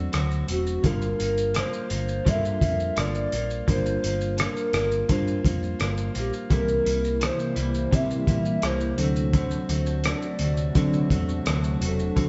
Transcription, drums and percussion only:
0.13 cross-stick, closed hi-hat, shaker
0.31 shaker
0.48 closed hi-hat, shaker
0.67 shaker
0.84 kick, closed hi-hat, shaker
1.02 shaker
1.20 closed hi-hat, shaker
1.38 shaker
1.55 cross-stick, closed hi-hat, shaker
1.73 shaker
1.90 closed hi-hat, shaker
2.09 shaker
2.26 kick, closed hi-hat, shaker
2.45 shaker
2.61 kick, closed hi-hat, shaker
2.80 shaker
2.97 cross-stick, closed hi-hat, shaker
3.15 shaker
3.32 closed hi-hat, shaker
3.50 shaker
3.68 kick, closed hi-hat, shaker
3.86 shaker
4.04 closed hi-hat, shaker
4.21 shaker
4.38 cross-stick, closed hi-hat, shaker
4.57 shaker
4.73 cross-stick, closed hi-hat, shaker
4.91 shaker
5.09 kick, closed hi-hat, shaker
5.28 shaker
5.45 kick, closed hi-hat, shaker
5.63 shaker
5.80 cross-stick, closed hi-hat, shaker
5.98 shaker
6.15 closed hi-hat, shaker
6.33 shaker
6.50 kick, closed hi-hat, shaker
6.68 shaker
6.86 closed hi-hat, shaker
7.04 shaker
7.21 cross-stick, closed hi-hat, shaker
7.39 shaker
7.56 closed hi-hat, shaker
7.75 shaker
7.93 kick, closed hi-hat, shaker
8.11 shaker
8.27 kick, closed hi-hat, shaker
8.45 shaker
8.62 cross-stick, closed hi-hat, shaker
8.80 shaker
8.98 closed hi-hat, shaker
9.16 shaker
9.33 kick, closed hi-hat, shaker
9.51 shaker
9.69 closed hi-hat, shaker
9.86 shaker
10.04 cross-stick, closed hi-hat, shaker
10.22 shaker
10.39 closed hi-hat, shaker
10.57 shaker
10.75 kick, closed hi-hat, shaker
10.93 shaker
11.10 kick, closed hi-hat, shaker
11.29 shaker
11.46 cross-stick, closed hi-hat, shaker
11.64 shaker
11.82 closed hi-hat, shaker
11.99 shaker
12.17 kick, closed hi-hat, shaker

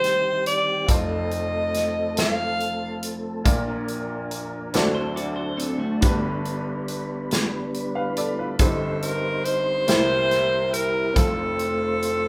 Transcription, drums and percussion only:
0.04 snare, closed hi-hat
0.46 closed hi-hat
0.88 kick, closed hi-hat
1.31 closed hi-hat
1.74 snare, closed hi-hat
2.17 snare, closed hi-hat
2.60 closed hi-hat
3.03 closed hi-hat
3.45 kick, closed hi-hat
3.88 closed hi-hat
4.31 closed hi-hat
4.74 snare, closed hi-hat
5.17 closed hi-hat
5.59 closed hi-hat
6.02 kick, closed hi-hat
6.45 closed hi-hat
6.88 closed hi-hat
7.31 snare, closed hi-hat
7.74 closed hi-hat
8.17 closed hi-hat
8.59 kick, closed hi-hat
9.02 closed hi-hat
9.45 closed hi-hat
9.88 snare, closed hi-hat
10.31 snare, closed hi-hat
10.74 closed hi-hat
11.16 kick, closed hi-hat
11.59 closed hi-hat
12.03 closed hi-hat

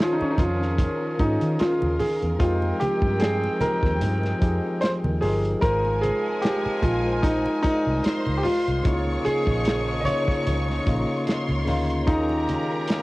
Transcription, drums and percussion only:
0.00 snare
0.21 muted conga
0.38 kick, closed hi-hat, high conga, low conga
0.62 snare
0.78 kick, closed hi-hat, muted conga, low conga
1.19 kick, closed hi-hat
1.41 closed hi-hat
1.59 snare, closed hi-hat, muted conga
1.82 muted conga, high conga
2.00 open hi-hat, low conga
2.22 closed hi-hat
2.40 kick, closed hi-hat
2.62 muted conga
2.81 closed hi-hat, high conga
3.02 kick
3.20 snare, closed hi-hat, muted conga
3.44 muted conga
3.61 closed hi-hat, high conga, low conga
3.83 kick, snare
4.01 closed hi-hat, muted conga, low conga
4.23 snare, muted conga
4.42 kick, closed hi-hat
4.82 snare, closed hi-hat
5.04 muted conga, high conga
5.22 open hi-hat, low conga
5.45 closed hi-hat
5.62 kick, closed hi-hat, muted conga
5.85 muted conga
6.03 closed hi-hat, high conga
6.42 snare, closed hi-hat, muted conga
6.66 muted conga
6.82 kick, closed hi-hat, high conga, low conga
7.23 kick, closed hi-hat, muted conga, low conga
7.46 muted conga
7.64 kick, closed hi-hat
8.04 snare, closed hi-hat
8.26 muted conga, high conga
8.45 open hi-hat, low conga
8.67 closed hi-hat
8.85 kick, closed hi-hat, muted conga
9.07 muted conga
9.26 closed hi-hat, high conga
9.47 kick
9.65 snare, closed hi-hat, muted conga
10.05 closed hi-hat, high conga, low conga
10.28 kick, snare
10.47 closed hi-hat, muted conga, low conga
10.68 snare, muted conga
10.87 kick, closed hi-hat
11.27 snare, closed hi-hat, muted conga
11.49 high conga
11.68 open hi-hat, low conga
11.90 closed hi-hat
12.07 kick, closed hi-hat, muted conga
12.29 muted conga
12.49 closed hi-hat, high conga
12.87 snare, closed hi-hat

